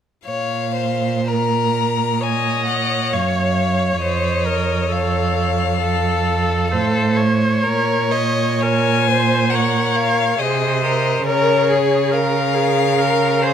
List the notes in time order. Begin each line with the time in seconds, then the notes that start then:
0.25 A#2 C#5 F5
0.76 C5
1.28 A#4 A#5
2.21 C#5 D#5 G#5
2.66 F#5
3.12 F#2 C#5 F5
4.02 F2 C5 D#5
4.46 A#4
4.91 A4 F5
5.81 A4
6.71 A2 A4 C5
7.16 C5 C#5
7.63 A#2 A#4 C#5
8.11 D#5
8.61 A#4 C#5 G#5
9.08 C5
9.50 A#4 F#5
9.55 C#5
9.96 F5
10.38 C3 G#4 C5 D#5
10.84 A#4
11.26 C#3 A#4 C#5
11.70 G#4
12.11 A#4 F5
12.54 G#4
12.98 A#4
13.42 G#4 C5